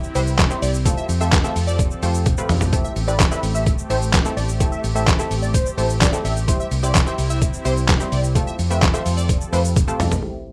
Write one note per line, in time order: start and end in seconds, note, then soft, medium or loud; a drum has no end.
0.00 0.84 C3 medium
0.00 6.44 C4 medium
0.00 0.84 E4 medium
0.00 10.19 G4 medium
0.00 shaker medium
0.15 0.46 C2 medium
0.15 0.42 G3 medium
0.15 0.42 C4 medium
0.15 0.42 E4 medium
0.15 0.42 G4 medium
0.15 0.42 B4 medium
0.15 0.23 C5 medium
0.15 open hi-hat medium
0.15 shaker medium
0.27 shaker medium
0.39 kick loud
0.39 snare loud
0.39 clap loud
0.39 closed hi-hat medium
0.39 shaker medium
0.50 0.77 G3 medium
0.50 0.77 C4 medium
0.50 0.77 E4 medium
0.50 0.77 G4 medium
0.50 0.77 C5 medium
0.50 shaker medium
0.62 0.93 C2 loud
0.62 0.70 D5 medium
0.62 open hi-hat medium
0.62 shaker medium
0.74 shaker medium
0.86 2.71 F3 medium
0.86 1.12 A3 medium
0.86 1.12 C4 medium
0.86 1.12 F4 medium
0.86 1.12 G4 medium
0.86 2.71 A4 medium
0.86 1.12 A4 medium
0.86 kick loud
0.86 closed hi-hat medium
0.86 shaker medium
0.97 1.05 E5 medium
0.97 shaker soft
1.09 1.40 F2 loud
1.09 open hi-hat medium
1.09 shaker medium
1.20 1.38 A3 medium
1.20 1.38 C4 medium
1.20 1.38 F4 medium
1.20 1.38 G4 medium
1.20 1.38 A4 medium
1.20 1.29 E5 medium
1.20 shaker medium
1.32 kick loud
1.32 snare loud
1.32 clap loud
1.32 closed hi-hat medium
1.32 shaker medium
1.44 1.88 A3 medium
1.44 1.88 C4 medium
1.44 1.88 F4 medium
1.44 1.88 G4 medium
1.44 1.88 A4 medium
1.44 1.52 E5 medium
1.44 shaker medium
1.56 1.86 F2 medium
1.56 open hi-hat medium
1.56 shaker medium
1.67 1.83 D5 medium
1.67 shaker medium
1.79 kick loud
1.79 closed hi-hat medium
1.79 shaker medium
1.91 shaker medium
2.03 2.33 F2 medium
2.03 2.29 A3 medium
2.03 2.29 C4 medium
2.03 2.29 F4 medium
2.03 2.29 G4 medium
2.03 2.29 A4 medium
2.03 2.11 C5 medium
2.03 open hi-hat medium
2.03 shaker medium
2.14 shaker medium
2.26 kick loud
2.26 closed hi-hat medium
2.26 high tom medium
2.26 shaker medium
2.37 2.64 A3 loud
2.37 2.64 C4 medium
2.37 2.64 F4 medium
2.37 2.64 G4 medium
2.37 2.64 B4 loud
2.37 shaker medium
2.49 2.80 F2 loud
2.49 mid tom loud
2.49 open hi-hat medium
2.49 shaker medium
2.61 floor tom loud
2.61 shaker medium
2.73 2.99 A3 medium
2.73 6.44 A3 medium
2.73 2.99 C4 medium
2.73 2.99 E4 medium
2.73 2.99 G4 medium
2.73 2.99 A4 medium
2.73 kick loud
2.73 closed hi-hat medium
2.73 shaker medium
2.84 2.92 E5 medium
2.84 shaker soft
2.96 3.27 A1 loud
2.96 open hi-hat medium
2.96 shaker medium
3.08 3.25 A3 medium
3.08 3.26 C4 medium
3.08 3.26 E4 medium
3.08 3.26 G4 medium
3.08 3.26 B4 medium
3.08 3.16 D5 medium
3.08 shaker medium
3.20 kick loud
3.20 snare loud
3.20 clap loud
3.20 closed hi-hat medium
3.20 shaker medium
3.31 3.75 A3 medium
3.31 3.75 C4 medium
3.31 3.75 E4 medium
3.31 3.75 G4 medium
3.31 3.75 B4 medium
3.31 3.40 E5 medium
3.31 shaker medium
3.43 3.74 A1 loud
3.43 open hi-hat medium
3.43 shaker medium
3.55 3.71 E5 medium
3.55 shaker medium
3.66 kick loud
3.66 closed hi-hat medium
3.66 shaker medium
3.78 shaker medium
3.90 4.21 A1 medium
3.90 4.16 A3 medium
3.90 4.16 C4 medium
3.90 4.16 E4 medium
3.90 4.16 G4 medium
3.90 4.17 A4 medium
3.90 3.98 C5 medium
3.90 open hi-hat medium
3.90 shaker medium
4.02 shaker medium
4.13 kick loud
4.13 snare loud
4.13 clap loud
4.13 closed hi-hat medium
4.13 shaker medium
4.25 4.51 A3 medium
4.25 4.52 C4 medium
4.25 4.52 E4 medium
4.25 4.52 G4 medium
4.25 4.52 A4 medium
4.25 shaker medium
4.37 4.68 A1 loud
4.37 4.45 D5 medium
4.37 open hi-hat medium
4.37 shaker medium
4.49 shaker medium
4.60 4.87 A3 medium
4.60 4.87 C4 medium
4.60 4.87 E4 medium
4.60 4.87 G4 medium
4.60 4.87 A4 medium
4.60 kick loud
4.60 closed hi-hat medium
4.60 shaker medium
4.72 4.80 E5 medium
4.72 shaker soft
4.84 5.15 A1 loud
4.84 open hi-hat medium
4.84 shaker medium
4.95 5.13 A3 medium
4.95 5.13 C4 medium
4.95 5.13 E4 medium
4.95 5.13 G4 medium
4.95 5.13 A4 medium
4.95 5.04 E5 medium
4.95 shaker medium
5.07 kick loud
5.07 snare loud
5.07 clap loud
5.07 closed hi-hat medium
5.07 shaker medium
5.19 5.63 A3 medium
5.19 5.63 C4 medium
5.19 5.63 E4 medium
5.19 5.63 G4 medium
5.19 5.63 A4 medium
5.19 5.27 E5 medium
5.19 shaker medium
5.31 5.61 A1 medium
5.31 open hi-hat medium
5.31 shaker medium
5.42 5.50 D5 medium
5.42 shaker medium
5.54 5.70 C5 medium
5.54 kick loud
5.54 closed hi-hat medium
5.54 shaker medium
5.66 shaker medium
5.78 6.08 A1 medium
5.78 6.04 A3 medium
5.78 6.04 C4 medium
5.78 6.04 E4 medium
5.78 6.04 G4 medium
5.78 6.04 A4 medium
5.78 5.86 C5 medium
5.78 open hi-hat medium
5.78 shaker medium
5.90 shaker medium
6.01 6.09 D5 medium
6.01 kick loud
6.01 snare loud
6.01 clap loud
6.01 closed hi-hat medium
6.01 shaker medium
6.13 6.39 A3 medium
6.13 6.39 C4 medium
6.13 6.39 E4 medium
6.13 6.39 G4 medium
6.13 6.39 A4 medium
6.13 shaker medium
6.25 6.55 A1 loud
6.25 6.33 E5 medium
6.25 open hi-hat medium
6.25 shaker medium
6.36 shaker medium
6.48 8.34 C3 medium
6.48 6.74 G3 medium
6.48 6.74 C4 medium
6.48 10.19 C4 medium
6.48 6.74 E4 medium
6.48 8.34 E4 medium
6.48 6.74 G4 medium
6.48 6.74 C5 medium
6.48 kick loud
6.48 closed hi-hat medium
6.48 shaker medium
6.60 6.68 E5 medium
6.60 shaker soft
6.71 7.02 C2 loud
6.71 open hi-hat medium
6.71 shaker medium
6.83 7.01 G3 medium
6.83 7.01 C4 medium
6.83 7.01 E4 medium
6.83 7.01 G4 medium
6.83 7.01 C5 medium
6.83 6.91 D5 medium
6.83 shaker medium
6.95 kick loud
6.95 snare loud
6.95 clap loud
6.95 closed hi-hat medium
6.95 shaker medium
7.06 7.50 G3 medium
7.06 7.50 C4 medium
7.06 7.50 E4 medium
7.06 7.50 G4 medium
7.06 7.51 C5 medium
7.06 7.15 E5 medium
7.06 shaker medium
7.18 7.49 C2 medium
7.18 open hi-hat medium
7.18 shaker medium
7.30 7.46 E5 medium
7.30 shaker medium
7.42 kick loud
7.42 closed hi-hat medium
7.42 shaker medium
7.53 shaker soft
7.65 7.96 C2 medium
7.65 7.91 G3 medium
7.65 7.91 C4 medium
7.65 7.91 E4 medium
7.65 7.91 G4 medium
7.65 7.73 C5 medium
7.65 7.92 C5 medium
7.65 open hi-hat medium
7.65 shaker medium
7.77 shaker medium
7.88 kick loud
7.88 snare loud
7.88 clap loud
7.88 closed hi-hat medium
7.88 shaker medium
8.00 8.26 G3 medium
8.00 8.27 C4 medium
8.00 8.27 E4 medium
8.00 8.27 G4 medium
8.00 8.27 C5 medium
8.00 shaker medium
8.12 8.43 C2 loud
8.12 8.20 D5 medium
8.12 open hi-hat medium
8.12 shaker medium
8.24 shaker medium
8.35 10.21 F3 medium
8.35 8.62 A3 medium
8.35 8.62 C4 medium
8.35 8.62 F4 medium
8.35 8.62 G4 medium
8.35 10.21 A4 medium
8.35 8.62 A4 medium
8.35 kick loud
8.35 closed hi-hat medium
8.35 shaker medium
8.47 8.55 E5 medium
8.47 shaker medium
8.59 8.90 F2 loud
8.59 open hi-hat medium
8.59 shaker medium
8.70 8.88 A3 medium
8.70 8.88 C4 medium
8.70 8.88 F4 medium
8.70 8.88 G4 medium
8.70 8.88 B4 medium
8.70 8.78 E5 medium
8.70 shaker medium
8.82 kick loud
8.82 snare medium
8.82 clap loud
8.82 closed hi-hat medium
8.82 shaker medium
8.94 9.38 A3 medium
8.94 9.38 C4 medium
8.94 9.38 F4 medium
8.94 9.38 G4 medium
8.94 9.38 C5 medium
8.94 9.02 E5 medium
8.94 shaker medium
9.06 9.37 F2 medium
9.06 open hi-hat medium
9.06 shaker medium
9.17 9.33 D5 medium
9.17 shaker medium
9.29 kick loud
9.29 closed hi-hat medium
9.29 shaker medium
9.41 shaker soft
9.53 9.83 F2 medium
9.53 9.79 A3 medium
9.53 9.79 C4 medium
9.53 9.79 F4 medium
9.53 9.79 G4 medium
9.53 9.79 B4 medium
9.53 9.61 C5 medium
9.53 open hi-hat medium
9.53 shaker medium
9.65 shaker medium
9.76 kick loud
9.76 closed hi-hat medium
9.76 high tom medium
9.76 shaker medium
9.88 10.14 A3 loud
9.88 10.14 C4 medium
9.88 10.14 F4 medium
9.88 10.14 G4 medium
9.88 10.14 A4 loud
9.88 shaker medium
10.00 10.15 F2 loud
10.00 mid tom loud
10.00 open hi-hat medium
10.00 shaker medium
10.12 floor tom loud
10.12 shaker medium
10.22 10.52 A2 medium
10.22 10.52 A3 medium
10.22 10.52 C4 medium
10.22 10.52 E4 medium
10.22 10.52 G4 medium
10.22 10.52 C5 medium